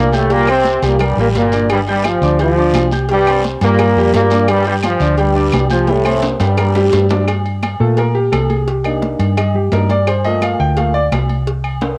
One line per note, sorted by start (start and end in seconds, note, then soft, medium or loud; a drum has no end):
0.00 0.77 C2 medium
0.00 0.14 A#2 medium
0.00 0.14 A#3 loud
0.12 0.32 A2 medium
0.12 0.32 A3 loud
0.12 0.27 G4 medium
0.12 0.27 G5 medium
0.12 0.28 G6 medium
0.12 high conga medium
0.12 low agogo medium
0.12 short guiro medium
0.30 0.48 A#2 loud
0.30 0.45 G3 medium
0.30 0.48 A#3 loud
0.30 0.45 G4 medium
0.30 0.45 G5 medium
0.30 cowbell loud
0.30 high conga soft
0.30 long guiro medium
0.47 0.81 C3 loud
0.47 0.77 C4 medium
0.47 0.82 C4 loud
0.47 0.77 C5 medium
0.47 0.77 C6 medium
0.47 low agogo loud
0.47 claves medium
0.65 cowbell medium
0.65 high conga loud
0.65 low timbale medium
0.65 short guiro medium
0.82 1.15 C2 medium
0.82 1.00 A#2 medium
0.82 0.97 G3 medium
0.82 1.00 A#3 medium
0.82 0.97 G4 medium
0.82 0.98 G5 medium
0.82 cowbell medium
0.82 high conga soft
0.82 low agogo medium
0.82 short guiro medium
0.99 1.18 G2 medium
0.99 1.18 G3 medium
0.99 1.15 A#3 medium
0.99 1.15 A#4 medium
0.99 1.15 A#5 medium
0.99 cowbell loud
0.99 high conga soft
0.99 low conga medium
0.99 low agogo loud
0.99 long guiro medium
0.99 claves medium
1.17 1.33 A1 medium
1.17 1.27 A#2 medium
1.17 1.47 G3 loud
1.17 1.28 A#3 medium
1.17 1.47 G4 medium
1.17 1.47 G5 medium
1.17 high conga soft
1.17 low conga medium
1.34 2.16 G1 medium
1.34 1.69 A#2 medium
1.34 1.69 A#3 loud
1.34 cowbell medium
1.34 high conga medium
1.34 low timbale medium
1.34 low agogo medium
1.34 short guiro medium
1.52 1.81 D4 medium
1.52 1.82 D5 medium
1.52 1.82 D6 medium
1.52 cowbell medium
1.52 high conga medium
1.52 low agogo medium
1.52 short guiro medium
1.69 1.80 G2 medium
1.69 1.80 G3 loud
1.69 cowbell loud
1.69 low agogo loud
1.69 long guiro medium
1.69 claves medium
1.87 2.05 G2 medium
1.87 2.05 G3 loud
1.87 2.16 G4 medium
1.87 2.16 G5 medium
1.87 2.17 G6 medium
1.87 high conga soft
1.87 low agogo medium
2.04 2.40 F3 medium
2.04 2.40 F4 medium
2.04 cowbell medium
2.04 high conga loud
2.04 low timbale medium
2.04 low agogo loud
2.04 short guiro medium
2.04 claves medium
2.21 2.70 D2 medium
2.21 2.37 D4 medium
2.21 2.37 D5 medium
2.21 2.37 D6 medium
2.21 high conga soft
2.21 short guiro medium
2.39 2.89 F3 loud
2.39 2.89 F4 medium
2.39 2.54 G4 medium
2.39 2.54 G5 medium
2.39 2.55 G6 medium
2.39 cowbell medium
2.39 high conga soft
2.39 low agogo medium
2.39 long guiro medium
2.58 2.86 D4 medium
2.58 2.86 D5 medium
2.58 2.87 D6 medium
2.58 high conga soft
2.73 3.55 C2 medium
2.73 cowbell medium
2.73 high conga medium
2.73 low timbale medium
2.73 low agogo loud
2.73 short guiro medium
2.73 claves medium
2.92 3.06 G4 medium
2.92 3.07 G5 medium
2.92 3.07 G6 medium
2.92 high conga medium
2.92 low agogo medium
2.92 short guiro medium
3.09 3.43 G2 medium
3.09 3.25 G3 medium
3.09 3.43 G3 loud
3.09 3.25 G4 medium
3.09 3.25 G5 medium
3.09 cowbell loud
3.09 high conga soft
3.09 long guiro medium
3.27 3.56 C4 medium
3.27 3.56 C5 medium
3.27 3.56 C6 medium
3.27 high conga soft
3.27 low agogo loud
3.27 claves medium
3.44 cowbell medium
3.44 high conga medium
3.44 low timbale medium
3.44 short guiro medium
3.61 3.94 G2 loud
3.61 4.11 A#2 medium
3.61 3.76 G3 loud
3.61 4.11 A#3 loud
3.61 3.76 G4 medium
3.61 3.77 G5 medium
3.61 cowbell medium
3.61 low agogo medium
3.61 short guiro medium
3.79 3.94 A#3 medium
3.79 3.94 A#4 medium
3.79 3.94 A#5 medium
3.79 cowbell loud
3.79 high conga soft
3.79 low conga medium
3.79 low agogo loud
3.79 long guiro medium
3.79 claves medium
3.96 4.12 F2 medium
3.96 4.26 G3 loud
3.96 4.26 G4 loud
3.96 4.26 G5 loud
4.14 4.95 G2 medium
4.14 4.47 A#2 medium
4.14 4.47 A#3 loud
4.14 cowbell medium
4.14 high conga medium
4.14 low timbale medium
4.14 low agogo medium
4.14 short guiro medium
4.30 4.60 D4 medium
4.30 4.60 D5 medium
4.30 4.61 D6 medium
4.30 cowbell medium
4.30 high conga medium
4.30 low agogo medium
4.30 short guiro medium
4.48 4.66 G2 medium
4.48 4.66 G3 loud
4.48 cowbell loud
4.48 low agogo loud
4.48 long guiro medium
4.48 claves medium
4.65 4.75 G2 medium
4.65 4.75 G3 medium
4.65 4.95 G4 medium
4.65 4.95 G5 medium
4.65 4.95 G6 medium
4.65 high conga soft
4.65 low agogo medium
4.83 5.16 F3 loud
4.83 5.16 F4 medium
4.83 cowbell medium
4.83 high conga loud
4.83 low timbale medium
4.83 low agogo loud
4.83 short guiro medium
4.83 claves medium
5.00 5.49 D2 loud
5.00 5.15 D4 medium
5.00 5.15 D5 medium
5.00 5.16 D6 medium
5.00 high conga soft
5.00 short guiro medium
5.17 5.67 G2 medium
5.17 5.67 G3 medium
5.17 5.33 G4 medium
5.17 5.33 G5 medium
5.17 5.33 G6 medium
5.17 cowbell loud
5.17 high conga soft
5.17 low agogo medium
5.17 long guiro medium
5.35 5.64 D4 medium
5.35 5.64 D5 medium
5.35 5.64 D6 medium
5.35 high conga soft
5.52 6.34 C2 medium
5.52 cowbell medium
5.52 high conga medium
5.52 low timbale medium
5.52 low agogo loud
5.52 short guiro medium
5.52 claves medium
5.70 5.89 F3 medium
5.70 5.89 F4 medium
5.70 5.85 G4 medium
5.70 5.85 G5 medium
5.70 5.85 G6 medium
5.70 high conga medium
5.70 low agogo medium
5.70 short guiro medium
5.87 6.24 A2 medium
5.87 6.02 G3 medium
5.87 6.24 A3 loud
5.87 6.02 G4 medium
5.87 6.02 G5 medium
5.87 cowbell medium
5.87 high conga medium
5.87 long guiro medium
6.05 6.34 C4 medium
6.05 6.34 C5 medium
6.05 6.34 C6 medium
6.05 high conga medium
6.05 low agogo loud
6.05 claves medium
6.22 cowbell medium
6.22 high conga loud
6.22 high timbale medium
6.22 short guiro medium
6.40 6.89 G2 loud
6.40 7.07 G2 medium
6.40 6.55 G3 medium
6.40 7.07 G3 medium
6.40 6.55 G4 medium
6.40 6.55 G5 medium
6.40 cowbell medium
6.40 high conga medium
6.40 high timbale medium
6.40 low agogo loud
6.40 short guiro medium
6.57 6.72 A#3 medium
6.57 6.72 A#4 medium
6.57 6.73 A#5 medium
6.57 cowbell loud
6.57 low conga loud
6.57 low agogo loud
6.57 long guiro medium
6.57 claves medium
6.75 7.04 G3 medium
6.75 7.04 G4 loud
6.75 7.04 G5 medium
6.75 high bongo medium
6.75 low timbale medium
6.92 7.74 G2 medium
6.92 cowbell medium
6.92 high bongo medium
6.92 low conga medium
6.92 low timbale medium
6.92 low agogo medium
6.92 short guiro medium
7.09 7.24 D4 medium
7.09 7.24 D5 medium
7.09 7.25 D6 medium
7.09 cowbell medium
7.09 low bongo loud
7.09 low conga medium
7.09 low timbale medium
7.09 low agogo medium
7.09 short guiro medium
7.27 cowbell loud
7.27 high conga soft
7.27 low agogo loud
7.27 claves medium
7.45 high conga soft
7.45 low agogo medium
7.62 cowbell medium
7.62 high conga loud
7.62 low timbale medium
7.62 low agogo loud
7.62 claves medium
7.80 8.29 A#2 loud
7.80 8.03 A3 medium
7.80 8.03 A#3 soft
7.80 8.04 F4 medium
7.80 7.97 A4 medium
7.80 high conga soft
7.97 8.15 A#4 medium
7.97 cowbell loud
7.97 low agogo medium
8.15 8.32 G4 medium
8.15 high conga soft
8.32 9.14 C2 medium
8.32 8.49 A4 medium
8.32 cowbell medium
8.32 high conga medium
8.32 low timbale medium
8.32 low agogo loud
8.32 claves medium
8.50 8.67 G#4 medium
8.50 high conga medium
8.50 low agogo medium
8.67 9.00 G4 medium
8.67 cowbell loud
8.67 high conga soft
8.84 9.34 A#3 medium
8.84 9.35 D4 medium
8.84 9.35 D#4 medium
8.84 high conga soft
8.84 low agogo medium
8.84 claves medium
9.02 cowbell medium
9.02 high conga loud
9.02 low timbale medium
9.19 9.68 G2 medium
9.19 cowbell medium
9.19 low agogo medium
9.37 9.54 D#5 medium
9.37 cowbell loud
9.37 high conga soft
9.37 low conga medium
9.37 low agogo loud
9.37 claves medium
9.54 9.72 G4 medium
9.54 high conga soft
9.54 low conga medium
9.72 10.54 G2 medium
9.72 9.88 A#3 soft
9.72 9.88 D4 soft
9.72 9.89 D#4 medium
9.72 9.89 A#4 medium
9.72 cowbell medium
9.72 high conga medium
9.72 low timbale medium
9.72 low agogo medium
9.89 10.07 D5 medium
9.89 cowbell medium
9.89 high conga medium
9.89 low agogo medium
10.07 10.24 C5 medium
10.07 cowbell medium
10.07 high conga soft
10.07 low agogo loud
10.07 claves medium
10.24 10.76 A3 medium
10.24 10.76 A#3 medium
10.24 10.76 F4 medium
10.24 10.42 D#5 loud
10.24 high conga soft
10.24 low agogo medium
10.42 10.59 F5 medium
10.42 cowbell medium
10.42 high conga loud
10.42 low timbale medium
10.42 low agogo loud
10.42 claves medium
10.60 11.08 D2 medium
10.60 10.77 G5 loud
10.60 high conga soft
10.77 10.93 A3 soft
10.77 10.93 A#3 soft
10.77 10.93 F4 soft
10.77 10.94 F5 medium
10.77 cowbell loud
10.77 high conga soft
10.77 low agogo medium
10.94 11.05 D5 loud
10.94 high conga soft
11.12 11.93 C2 medium
11.12 cowbell medium
11.12 high conga medium
11.12 low timbale medium
11.12 low agogo loud
11.12 claves medium
11.30 high conga medium
11.30 low agogo medium
11.47 cowbell loud
11.64 high conga soft
11.64 low agogo loud
11.64 claves medium
11.81 cowbell medium
11.81 high conga loud
11.81 high timbale loud